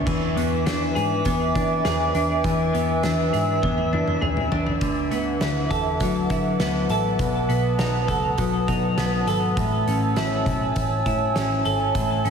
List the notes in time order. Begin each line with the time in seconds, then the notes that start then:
Already playing: B3 D4 G#4
0.06 E2 E3 B4 E5 G#5 D6, kick, crash
0.36 E2 B3, closed hi-hat
0.66 E2 D4, snare, closed hi-hat
0.95 G#2 G#4, closed hi-hat
1.25 E2 B3 D5, kick, closed hi-hat
1.55 E3 D4, kick, closed hi-hat
1.85 E2 G#4, snare, closed hi-hat
2.14 E2 D4, closed hi-hat
2.44 E2 E3 E6, kick, closed hi-hat
2.74 E2 B3, closed hi-hat
3.03 E2 D4 E5, snare, closed hi-hat
3.33 G#2 G#4, closed hi-hat
3.63 E2 B3, kick, high tom
3.78 high tom
3.93 E3 D4, mid tom
4.08 mid tom
4.21 E2 G#4, mid tom
4.37 mid tom
4.51 E2 D4, floor tom
4.67 floor tom
4.80 D2 D3 B4 E5 F#5 D6, kick, closed hi-hat
5.11 D2 B3, closed hi-hat
5.41 D2 E4, snare, closed hi-hat
5.70 E2 A4, kick, closed hi-hat
6.00 D2 F#3, kick, closed hi-hat
6.30 D3 E4, kick, closed hi-hat
6.60 D2 B3, snare, closed hi-hat
6.89 A1 A4, closed hi-hat
7.19 B1 B2 A5 D#6, kick, closed hi-hat
7.49 B1 B3, closed hi-hat
7.79 B1 D#4, snare, closed hi-hat
8.08 C#2 A4, kick, closed hi-hat
8.38 B1 F#3, kick, closed hi-hat
8.68 B2 D#4, kick, closed hi-hat
8.97 B1 B3, snare, closed hi-hat
9.27 G#1 A4, closed hi-hat
9.57 A1 A2 C#5 G#5 A5 E6, kick, closed hi-hat
9.87 A1 C#4, closed hi-hat
10.16 A1 E4, snare, closed hi-hat
10.46 B1, kick, closed hi-hat
10.76 A1, kick, closed hi-hat
11.06 A2 E4, kick, closed hi-hat
11.35 A1 C#4, snare, closed hi-hat
11.65 G#1 A4, closed hi-hat
11.95 A1 A2 F#6, kick, closed hi-hat
12.25 A1 C#4, closed hi-hat